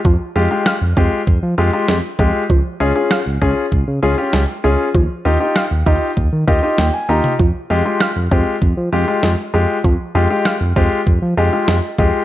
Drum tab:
SD |----o-------o---|----o-------o---|----o-------o---|----o-------o---|
T2 |----------------|----------------|---------------o|----------------|
BD |o-----o-o-----o-|o-----o-o-------|o-----o-o-o-----|o-----o-o-------|

SD |----o-------o---|
T2 |----------------|
BD |o-----o-o-----o-|